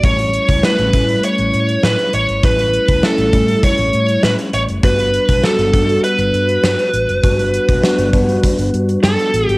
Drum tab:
HH |xxxx-xxxxxxx-xxx|xxxx-xxxxxxx-xxx|xxxx-xxxxxxx-xxx|xxxx-xxxxxxx-xxx|
SD |----o-------o---|----o-------o---|----o-------o---|----o-------o---|
BD |o--o--o---------|o--o--o-o-------|o--o--o---------|o--o--o-o-------|